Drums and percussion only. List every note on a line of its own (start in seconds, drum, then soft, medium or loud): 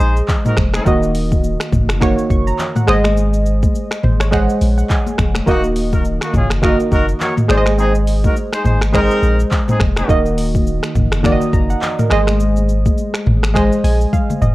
0.00 shaker medium
0.16 shaker medium
0.28 kick medium
0.28 clap loud
0.28 low conga medium
0.28 shaker medium
0.45 mid tom medium
0.45 high conga medium
0.45 shaker medium
0.57 finger snap medium
0.57 kick loud
0.57 cross-stick loud
0.57 low conga medium
0.73 finger snap medium
0.73 cross-stick loud
0.73 high conga medium
0.73 shaker medium
0.86 kick loud
0.86 shaker medium
1.03 shaker medium
1.15 open hi-hat medium
1.15 shaker medium
1.32 kick loud
1.32 high conga medium
1.32 shaker medium
1.44 shaker medium
1.60 finger snap medium
1.60 cross-stick medium
1.60 shaker medium
1.72 kick medium
1.72 mid tom loud
1.72 high conga medium
1.72 low conga medium
1.72 shaker medium
1.89 finger snap medium
1.89 cross-stick loud
1.89 shaker medium
2.01 finger snap medium
2.01 kick loud
2.01 cross-stick medium
2.01 low conga medium
2.01 shaker medium
2.18 shaker medium
2.30 kick loud
2.30 shaker medium
2.47 shaker medium
2.59 clap medium
2.59 low conga medium
2.59 shaker medium
2.76 mid tom medium
2.76 high conga medium
2.76 shaker medium
2.88 finger snap medium
2.88 cross-stick loud
2.88 low conga medium
3.04 finger snap medium
3.04 cross-stick medium
3.04 high conga medium
3.04 shaker medium
3.17 shaker medium
3.33 shaker medium
3.46 shaker medium
3.63 kick loud
3.63 high conga medium
3.63 shaker medium
3.75 shaker medium
3.91 finger snap medium
3.91 cross-stick medium
3.91 shaker medium
4.03 mid tom loud
4.03 high conga medium
4.03 low conga medium
4.20 finger snap medium
4.20 cross-stick loud
4.20 shaker medium
4.32 finger snap medium
4.32 kick medium
4.32 cross-stick medium
4.32 low conga medium
4.32 shaker medium
4.49 shaker medium
4.61 open hi-hat medium
4.61 shaker medium
4.78 shaker medium
4.90 kick loud
4.90 clap loud
4.90 low conga medium
4.90 shaker medium
5.07 high conga medium
5.07 shaker medium
5.18 finger snap medium
5.18 kick loud
5.18 cross-stick loud
5.18 low conga medium
5.18 shaker medium
5.35 finger snap medium
5.35 cross-stick medium
5.35 high conga medium
5.35 shaker medium
5.48 kick loud
5.48 shaker medium
5.64 shaker medium
5.76 open hi-hat medium
5.76 shaker medium
5.93 kick loud
5.93 high conga medium
5.93 shaker medium
6.05 shaker medium
6.21 finger snap medium
6.21 cross-stick medium
6.21 shaker medium
6.34 kick medium
6.34 mid tom loud
6.34 high conga medium
6.34 low conga medium
6.34 shaker medium
6.50 finger snap medium
6.50 cross-stick loud
6.50 shaker medium
6.63 finger snap medium
6.63 kick medium
6.63 cross-stick medium
6.63 low conga medium
6.63 shaker medium
6.80 shaker medium
6.92 kick loud
6.92 shaker medium
7.08 shaker medium
7.20 clap medium
7.20 low conga medium
7.20 shaker medium
7.37 mid tom loud
7.37 high conga medium
7.37 shaker medium
7.49 finger snap medium
7.49 cross-stick loud
7.49 low conga medium
7.66 finger snap medium
7.66 cross-stick loud
7.66 high conga medium
7.66 shaker medium
7.79 shaker medium
7.95 shaker medium
8.07 open hi-hat medium
8.07 shaker medium
8.24 kick medium
8.24 high conga medium
8.24 shaker medium
8.36 shaker medium
8.53 finger snap medium
8.53 cross-stick medium
8.53 shaker medium
8.65 mid tom loud
8.65 high conga medium
8.65 low conga medium
8.65 shaker medium
8.81 finger snap medium
8.81 cross-stick loud
8.81 shaker medium
8.94 finger snap medium
8.94 kick medium
8.94 cross-stick medium
8.94 low conga medium
8.94 shaker medium
9.11 shaker medium
9.23 shaker medium
9.39 shaker medium
9.51 kick medium
9.51 clap loud
9.51 low conga medium
9.51 shaker medium
9.68 mid tom loud
9.68 high conga medium
9.68 shaker medium
9.80 finger snap medium
9.80 kick loud
9.80 cross-stick loud
9.80 low conga medium
9.97 finger snap medium
9.97 cross-stick medium
9.97 high conga medium
9.97 shaker medium
10.09 kick loud
10.09 shaker medium
10.26 shaker medium
10.38 open hi-hat medium
10.38 shaker medium
10.55 kick medium
10.55 high conga medium
10.55 shaker medium
10.67 shaker medium
10.83 finger snap medium
10.83 cross-stick medium
10.83 shaker medium
10.95 kick medium
10.95 mid tom loud
10.95 high conga medium
10.95 low conga medium
10.95 shaker medium
11.12 finger snap medium
11.12 cross-stick loud
11.12 shaker medium
11.24 finger snap medium
11.24 kick medium
11.24 cross-stick medium
11.24 low conga medium
11.24 shaker medium
11.41 shaker medium
11.53 kick loud
11.53 shaker medium
11.70 shaker medium
11.82 clap loud
11.82 low conga medium
11.82 shaker medium
11.99 mid tom medium
11.99 high conga medium
11.99 shaker medium
12.10 finger snap medium
12.10 cross-stick loud
12.10 low conga medium
12.27 finger snap medium
12.27 cross-stick medium
12.27 high conga medium
12.27 shaker medium
12.40 shaker medium
12.56 high conga medium
12.56 shaker medium
12.69 shaker medium
12.86 kick loud
12.86 high conga medium
12.86 shaker medium
12.98 shaker medium
13.14 finger snap medium
13.14 cross-stick medium
13.14 shaker medium
13.26 mid tom loud
13.26 high conga medium
13.26 low conga medium
13.43 finger snap medium
13.43 cross-stick loud
13.43 shaker medium
13.55 finger snap medium
13.55 kick medium
13.55 cross-stick medium
13.55 low conga medium
13.55 shaker medium
13.72 shaker medium
13.85 open hi-hat medium
13.85 shaker medium
14.01 shaker medium
14.13 kick medium
14.13 high tom medium
14.13 low conga medium
14.13 shaker medium
14.30 mid tom medium
14.30 high conga medium
14.30 shaker medium
14.42 mid tom loud
14.42 low conga medium
14.42 shaker medium